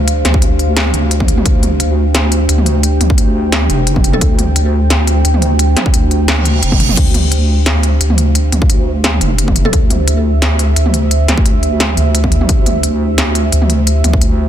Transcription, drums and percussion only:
0.08 closed hi-hat
0.25 snare, closed hi-hat, mid tom
0.34 kick
0.42 closed hi-hat
0.59 closed hi-hat
0.77 snare, closed hi-hat
0.86 mid tom
0.94 closed hi-hat
1.11 closed hi-hat
1.20 kick, mid tom
1.28 closed hi-hat
1.38 mid tom
1.46 kick, closed hi-hat
1.63 closed hi-hat, mid tom
1.80 closed hi-hat
2.15 snare, closed hi-hat
2.32 closed hi-hat
2.49 closed hi-hat
2.58 mid tom
2.66 closed hi-hat
2.83 closed hi-hat
3.01 closed hi-hat, mid tom
3.10 kick
3.18 closed hi-hat
3.52 snare, closed hi-hat
3.62 mid tom
3.70 closed hi-hat
3.87 closed hi-hat
3.96 kick, mid tom
4.04 closed hi-hat
4.13 mid tom
4.21 kick, closed hi-hat
4.39 closed hi-hat, mid tom
4.56 closed hi-hat
4.90 snare, closed hi-hat
5.07 closed hi-hat
5.25 closed hi-hat
5.34 mid tom
5.42 closed hi-hat
5.59 closed hi-hat
5.77 snare, closed hi-hat, mid tom
5.86 kick
5.94 closed hi-hat
6.11 closed hi-hat
6.28 snare, closed hi-hat
6.37 mid tom
6.45 closed hi-hat
6.63 closed hi-hat
6.72 kick, mid tom
6.80 closed hi-hat
6.89 mid tom
6.97 kick, closed hi-hat, crash
7.14 closed hi-hat, mid tom
7.32 closed hi-hat
7.66 snare, closed hi-hat
7.83 closed hi-hat
8.01 closed hi-hat
8.10 mid tom
8.18 closed hi-hat
8.35 closed hi-hat
8.52 closed hi-hat, mid tom
8.62 kick
8.70 closed hi-hat
9.04 snare, closed hi-hat
9.13 mid tom
9.21 closed hi-hat
9.38 closed hi-hat
9.48 kick, mid tom
9.56 closed hi-hat
9.65 mid tom
9.73 kick, closed hi-hat
9.90 closed hi-hat, mid tom
10.08 closed hi-hat
10.42 snare, closed hi-hat
10.59 closed hi-hat
10.76 closed hi-hat
10.86 mid tom
10.94 closed hi-hat
11.11 closed hi-hat
11.28 snare, closed hi-hat, mid tom
11.37 kick
11.46 closed hi-hat
11.63 closed hi-hat
11.80 snare, closed hi-hat
11.89 mid tom
11.97 closed hi-hat
12.15 closed hi-hat
12.24 kick, mid tom
12.32 closed hi-hat
12.41 mid tom
12.49 kick, closed hi-hat
12.66 closed hi-hat, mid tom
12.83 closed hi-hat
13.18 snare, closed hi-hat
13.35 closed hi-hat
13.52 closed hi-hat
13.62 mid tom
13.70 closed hi-hat
13.87 closed hi-hat
14.04 closed hi-hat, mid tom
14.13 kick
14.21 closed hi-hat

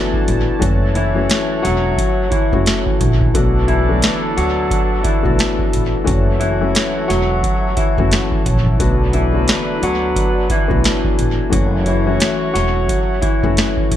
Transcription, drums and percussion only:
0.14 kick
0.28 closed hi-hat
0.62 kick, closed hi-hat
0.95 closed hi-hat
1.30 snare, closed hi-hat
1.65 snare, closed hi-hat
1.98 kick, closed hi-hat
2.32 kick, closed hi-hat
2.52 kick
2.66 snare, closed hi-hat
2.86 kick
3.01 kick, closed hi-hat
3.21 kick
3.34 kick, closed hi-hat
3.68 closed hi-hat
4.02 snare, closed hi-hat
4.38 closed hi-hat
4.71 kick, closed hi-hat
5.04 kick, closed hi-hat
5.25 kick
5.39 snare, closed hi-hat
5.59 kick
5.73 closed hi-hat
6.07 kick, closed hi-hat
6.41 closed hi-hat
6.75 snare, closed hi-hat
7.10 snare, closed hi-hat
7.43 kick, closed hi-hat
7.77 kick, closed hi-hat
7.98 kick
8.12 snare, closed hi-hat
8.32 kick
8.46 kick, closed hi-hat
8.67 kick
8.80 kick, closed hi-hat
9.13 closed hi-hat
9.48 snare, closed hi-hat
9.83 closed hi-hat
10.16 kick, closed hi-hat
10.50 kick, closed hi-hat
10.70 kick
10.84 snare, closed hi-hat
11.04 kick
11.19 closed hi-hat
11.52 kick, closed hi-hat
11.86 closed hi-hat
12.20 snare, closed hi-hat
12.55 snare, closed hi-hat
12.89 kick, closed hi-hat
13.22 kick, closed hi-hat
13.43 kick
13.57 snare, closed hi-hat
13.77 kick
13.91 kick, closed hi-hat

